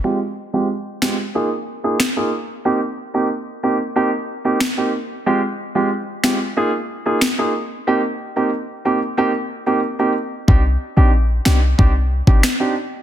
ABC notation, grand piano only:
X:1
M:4/4
L:1/16
Q:1/4=92
K:Cm
V:1 name="Grand piano"
[A,CFG] z2 [A,CFG] z2 [A,CFG] z [B,EFA] z2 [B,EFA] z [B,EFA] z2 | [B,CEG] z2 [B,CEG] z2 [B,CEG] z [B,CEG] z2 [B,CEG] z [B,CEG] z2 | [A,CFG] z2 [A,CFG] z2 [A,CFG] z [B,EFA] z2 [B,EFA] z [B,EFA] z2 | [B,CEG] z2 [B,CEG] z2 [B,CEG] z [B,CEG] z2 [B,CEG] z [B,CEG] z2 |
[CDEG] z2 [CDEG] z2 [CDEG] z [CDEG] z2 [CDEG] z [CDEG] z2 |]